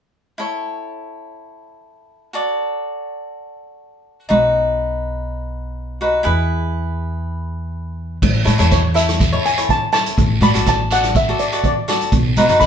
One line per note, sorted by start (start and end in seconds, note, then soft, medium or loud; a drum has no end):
0.38 2.30 E4 medium
0.38 2.31 A4 medium
0.38 2.31 C#5 medium
2.33 4.26 F#4 medium
2.33 4.26 A4 medium
2.33 4.27 D5 medium
4.29 6.22 B1 medium
4.29 5.98 D#4 medium
4.29 5.98 F#4 medium
4.29 5.98 B4 medium
6.01 6.23 D#4 soft
6.01 6.26 F#4 soft
6.01 6.24 B4 medium
6.23 8.18 E2 medium
6.23 8.16 E4 medium
6.23 8.17 G#4 medium
6.23 8.17 B4 medium
8.22 8.41 A1 medium
8.22 kick medium
8.22 crash medium
8.22 long guiro medium
8.45 8.57 A2 medium
8.45 8.53 E4 medium
8.45 8.53 A4 soft
8.45 8.53 C#5 medium
8.45 closed hi-hat medium
8.58 9.37 E2 medium
8.58 8.80 E4 medium
8.58 8.80 A4 soft
8.58 8.81 C#5 medium
8.58 closed hi-hat medium
8.71 8.94 C#5 medium
8.71 kick medium
8.71 cross-stick medium
8.71 closed hi-hat soft
8.71 short guiro medium
8.94 9.17 E4 medium
8.94 9.17 A4 medium
8.94 9.17 E5 medium
8.94 9.41 E5 medium
8.94 closed hi-hat medium
8.94 short guiro medium
9.09 cross-stick medium
9.09 closed hi-hat medium
9.19 kick medium
9.19 closed hi-hat medium
9.19 short guiro medium
9.19 long guiro medium
9.32 9.47 E4 medium
9.32 9.47 A4 medium
9.32 9.47 C#5 medium
9.45 9.70 G#5 medium
9.45 closed hi-hat medium
9.57 9.79 E4 medium
9.57 9.79 A4 medium
9.57 9.79 C#5 medium
9.57 closed hi-hat medium
9.69 9.92 A5 medium
9.69 kick medium
9.69 closed hi-hat soft
9.92 10.17 E4 medium
9.92 10.17 A4 medium
9.92 10.17 C#5 medium
9.92 10.43 A5 medium
9.92 cross-stick medium
9.92 closed hi-hat medium
9.92 short guiro medium
10.06 closed hi-hat medium
10.17 10.37 A1 medium
10.17 kick loud
10.17 closed hi-hat medium
10.17 long guiro medium
10.41 10.51 A2 medium
10.41 10.49 F#4 medium
10.41 10.49 A4 soft
10.41 10.49 D5 medium
10.41 10.67 B5 medium
10.41 closed hi-hat medium
10.54 11.32 A1 medium
10.54 10.76 F#4 medium
10.54 10.76 A4 medium
10.54 10.77 D5 medium
10.54 closed hi-hat medium
10.66 10.90 A5 medium
10.66 kick medium
10.66 cross-stick medium
10.66 closed hi-hat medium
10.66 short guiro medium
10.91 11.12 F#4 medium
10.91 11.13 A4 medium
10.91 11.13 D5 medium
10.91 11.14 F#5 medium
10.91 closed hi-hat medium
10.91 short guiro medium
11.03 cross-stick medium
11.03 closed hi-hat medium
11.15 11.40 E5 medium
11.15 kick medium
11.15 closed hi-hat medium
11.15 short guiro medium
11.15 long guiro medium
11.29 11.42 F#4 medium
11.29 11.42 A4 medium
11.29 11.42 D5 medium
11.39 11.64 D5 medium
11.39 closed hi-hat medium
11.52 11.74 F#4 medium
11.52 11.74 A4 soft
11.52 11.74 D5 medium
11.52 closed hi-hat soft
11.64 11.99 D5 medium
11.64 kick medium
11.64 closed hi-hat soft
11.88 12.12 F#4 medium
11.88 12.12 A4 medium
11.88 12.13 D5 medium
11.88 cross-stick medium
11.88 closed hi-hat medium
11.88 short guiro medium
12.01 closed hi-hat soft
12.12 12.31 B1 medium
12.12 kick medium
12.12 closed hi-hat medium
12.12 long guiro medium
12.36 12.46 B2 medium
12.36 12.44 D#4 medium
12.36 12.44 F#4 medium
12.36 12.45 B4 medium
12.36 closed hi-hat medium
12.48 12.66 F#2 medium
12.48 12.66 D#4 medium
12.48 12.66 F#4 medium
12.48 12.66 B4 medium
12.48 closed hi-hat medium
12.60 12.66 B5 medium
12.60 kick medium
12.60 cross-stick medium
12.60 closed hi-hat soft
12.60 short guiro medium